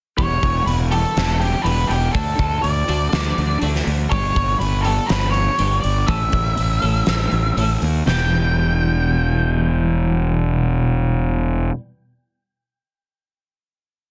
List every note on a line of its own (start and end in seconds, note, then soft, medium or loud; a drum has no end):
0.18 0.37 E1 medium
0.18 0.43 E3 medium
0.18 0.43 G3 medium
0.18 0.43 B3 medium
0.18 0.43 G4 medium
0.18 0.66 C#5 medium
0.18 kick medium
0.18 open hi-hat medium
0.43 0.62 E1 medium
0.43 muted clean electric guitar stroke soft
0.43 kick medium
0.43 open hi-hat soft
0.66 1.04 E1 medium
0.66 0.73 B4 medium
0.66 muted clean electric guitar stroke soft
0.66 open hi-hat medium
0.91 1.15 E3 medium
0.91 1.15 G3 medium
0.91 1.16 B3 medium
0.91 1.16 G4 medium
0.91 1.37 A4 medium
0.91 open hi-hat soft
1.16 1.54 E1 medium
1.16 muted clean electric guitar stroke soft
1.16 snare medium
1.16 open hi-hat medium
1.40 1.63 G4 medium
1.40 muted clean electric guitar stroke soft
1.40 open hi-hat soft
1.62 1.84 E1 medium
1.62 1.89 E3 medium
1.62 1.89 G3 medium
1.62 1.89 B3 medium
1.62 1.89 G4 medium
1.62 1.89 B4 medium
1.66 open hi-hat medium
1.88 2.08 E1 medium
1.88 2.12 G4 medium
1.88 muted clean electric guitar stroke soft
1.88 open hi-hat soft
2.13 2.33 D2 medium
2.13 2.39 D3 medium
2.13 2.40 A3 medium
2.13 2.39 D4 medium
2.13 2.39 F#4 medium
2.13 2.59 A4 medium
2.13 kick medium
2.13 open hi-hat medium
2.39 2.58 D2 medium
2.39 muted clean electric guitar stroke soft
2.39 kick medium
2.39 open hi-hat soft
2.62 2.83 D2 medium
2.62 3.57 D5 medium
2.62 muted clean electric guitar stroke soft
2.62 open hi-hat medium
2.88 3.07 D2 medium
2.88 3.11 D3 medium
2.88 3.12 A3 medium
2.88 3.12 D4 medium
2.88 3.12 F#4 medium
2.88 open hi-hat soft
3.12 3.32 D2 medium
3.12 muted clean electric guitar stroke soft
3.12 snare medium
3.12 open hi-hat medium
3.38 3.56 D2 medium
3.38 muted clean electric guitar stroke soft
3.38 open hi-hat soft
3.62 3.81 D2 medium
3.62 3.87 D3 medium
3.62 3.87 A3 medium
3.62 3.87 D4 medium
3.62 3.87 F#4 medium
3.62 open hi-hat medium
3.75 snare soft
3.87 4.05 D2 medium
3.87 muted clean electric guitar stroke soft
3.87 open hi-hat soft
4.10 4.31 G1 medium
4.10 4.36 G3 medium
4.10 4.35 B3 medium
4.10 4.35 D4 medium
4.10 4.35 G4 medium
4.10 4.57 C#5 medium
4.10 kick medium
4.10 open hi-hat medium
4.36 4.55 G1 medium
4.36 muted clean electric guitar stroke soft
4.36 kick medium
4.36 open hi-hat soft
4.59 4.98 G1 medium
4.59 4.83 B4 medium
4.59 muted clean electric guitar stroke soft
4.59 open hi-hat medium
4.81 5.09 A4 medium
4.81 open hi-hat soft
4.85 5.08 G3 medium
4.85 5.09 B3 medium
4.85 5.09 D4 medium
4.85 5.09 G4 medium
5.06 5.30 B4 medium
5.06 muted clean electric guitar stroke soft
5.06 snare medium
5.06 open hi-hat medium
5.10 5.48 G1 medium
5.31 5.79 C#5 medium
5.31 muted clean electric guitar stroke soft
5.31 open hi-hat soft
5.59 5.78 G1 medium
5.59 5.83 G3 medium
5.59 5.83 B3 medium
5.59 5.82 D4 medium
5.59 5.82 G4 medium
5.59 open hi-hat medium
5.80 6.03 G1 medium
5.80 6.08 D5 medium
5.80 muted clean electric guitar stroke soft
5.80 open hi-hat soft
6.07 6.28 A1 medium
6.07 6.33 E3 medium
6.07 6.33 A3 medium
6.07 6.32 C#4 medium
6.07 6.32 A4 medium
6.07 7.77 E5 medium
6.07 kick loud
6.07 open hi-hat medium
6.32 6.52 A1 medium
6.32 muted clean electric guitar stroke soft
6.32 kick medium
6.32 open hi-hat soft
6.57 6.77 A1 medium
6.57 muted clean electric guitar stroke soft
6.57 open hi-hat medium
6.82 7.02 A1 medium
6.82 7.07 E3 medium
6.82 7.07 A3 medium
6.82 7.07 C#4 medium
6.82 7.07 A4 medium
6.82 open hi-hat soft
7.06 7.27 A1 medium
7.06 muted clean electric guitar stroke soft
7.06 snare medium
7.06 open hi-hat medium
7.31 7.51 A1 medium
7.31 muted clean electric guitar stroke soft
7.31 open hi-hat soft
7.57 7.76 A1 medium
7.57 7.82 E3 medium
7.57 7.82 A3 medium
7.57 7.82 C#4 medium
7.57 7.82 A4 medium
7.57 open hi-hat medium
7.82 8.01 D#2 medium
7.82 muted clean electric guitar stroke soft
7.82 open hi-hat soft
8.06 11.70 E1 medium
8.06 11.73 E2 medium
8.06 11.74 B2 medium
8.06 11.75 E3 medium
8.06 11.76 G3 medium
8.06 11.77 B3 loud
8.06 11.70 G5 medium
8.06 snare medium
8.10 11.77 G4 medium